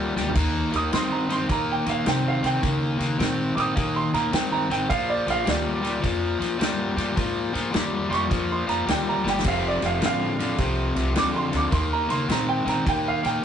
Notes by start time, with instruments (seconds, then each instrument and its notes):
Already playing: upright bass D2, overdriven electric guitar A#2 G3
0.16 upright bass D2, overdriven electric guitar A#2 G3, snare
0.29 floor tom
0.35 upright bass D#2, overdriven electric guitar D#3 A#3, kick, snare, ride, crash
0.72 upright bass D#2, overdriven electric guitar D#3 A#3, upright piano D#6, snare, ride
0.92 upright bass G2, overdriven electric guitar D#3 C4, upright piano C6, snare, ride
1.12 upright piano A#5
1.29 overdriven electric guitar D#3 C4, upright piano C6, snare, ride
1.49 upright bass A#2, overdriven electric guitar D#3 A#3, upright piano A#5, kick, snare, ride
1.72 upright piano G5
1.86 upright bass A#2, overdriven electric guitar D#3 A#3, upright piano F5, snare, ride
2.06 upright bass C3, overdriven electric guitar D#3 C4, upright piano G5, snare, ride
2.28 upright piano F5
2.43 upright bass C3, overdriven electric guitar D#3 C4, upright piano G5, snare, ride
2.62 upright bass C#3, overdriven electric guitar D#3 A#3, kick, snare, ride
2.99 upright bass C#3, overdriven electric guitar D#3 A#3, snare, ride
3.19 upright bass A#2, overdriven electric guitar D#3 C4, snare, ride
3.55 upright bass A#2, overdriven electric guitar D#3 C4, upright piano D6, snare, ride
3.60 upright piano D#6
3.76 upright bass A#2, overdriven electric guitar D#3 A#3, kick, snare, ride
3.96 upright piano C6
4.13 upright bass A#2, overdriven electric guitar D#3 A#3, upright piano A#5, snare, ride
4.32 upright bass G2, overdriven electric guitar D#3 C4, upright piano G5, snare, ride
4.52 upright piano A#5
4.70 upright bass A1, overdriven electric guitar D#3 C4, upright piano G5, snare, ride
4.89 upright bass A#1, overdriven electric guitar A#2 F3, upright piano F5, kick, snare, ride
5.10 upright piano D5
5.27 upright bass A#1, overdriven electric guitar A#2 F3, upright piano F5, snare, ride
5.45 upright bass D2, overdriven electric guitar A#2 G3, upright piano D5, snare, ride
5.82 overdriven electric guitar A#2 G3, snare, ride
6.01 upright bass F2, overdriven electric guitar A#2 F3, kick, snare, ride
6.39 upright bass F2, overdriven electric guitar A#2 F3, snare, ride
6.59 upright bass G2, overdriven electric guitar A#2 G3, snare, ride
6.96 upright bass G2, overdriven electric guitar A#2 G3, snare, ride
7.16 upright bass G#2, overdriven electric guitar A#2 F3, kick, snare, ride
7.53 upright bass G#2, overdriven electric guitar A#2 F3, snare, ride
7.71 upright bass F2, overdriven electric guitar A#2 G3, snare, ride
8.09 upright bass F2, overdriven electric guitar A#2 G3, upright piano C6, ride
8.13 upright piano C#6, snare
8.29 upright bass F2, overdriven electric guitar A#2 F3, kick, snare, ride
8.52 upright piano C6
8.67 upright bass F2, overdriven electric guitar A#2 F3, upright piano A#5, snare, ride
8.86 upright bass D2, overdriven electric guitar A#2 G3, snare, ride
8.90 upright piano G5
9.09 upright piano A#5
9.24 upright bass G1, overdriven electric guitar A#2 G3, snare
9.29 upright piano G5
9.39 snare
9.44 upright bass F1, overdriven electric guitar F2 C3, upright piano F5, kick, snare, crash, ride
9.68 upright piano D5
9.82 upright bass F1, overdriven electric guitar F2 C3, snare, ride
9.86 upright piano F5
10.01 upright bass A1, overdriven electric guitar F2 D3, snare, ride
10.06 upright piano F5
10.39 overdriven electric guitar F2 D3, snare, ride
10.58 upright bass C2, overdriven electric guitar F2 C3, kick, snare, ride
10.95 upright bass C2, overdriven electric guitar F2 C3, snare, ride
11.15 upright bass D2, overdriven electric guitar F2 D3, upright piano D6, snare, ride
11.36 upright piano C6
11.51 upright bass D2, overdriven electric guitar F2 D3, snare, ride
11.57 upright piano D6
11.71 upright bass D#2, overdriven electric guitar D#3 A#3, upright piano C6, kick, snare, ride
11.93 upright piano A#5
12.09 upright bass C#3, overdriven electric guitar D#3 A#3, upright piano C6, snare, ride
12.28 upright bass A#2, overdriven electric guitar D#3 C4, upright piano A#5, snare, ride
12.49 upright piano G5
12.66 upright bass A#2, overdriven electric guitar D#3 C4, upright piano A#5, snare, ride
12.86 upright bass A#2, overdriven electric guitar D#3 A#3, upright piano G5, kick, snare, ride
13.08 upright piano F5
13.23 upright bass A#2, overdriven electric guitar D#3 A#3, upright piano G5, snare, ride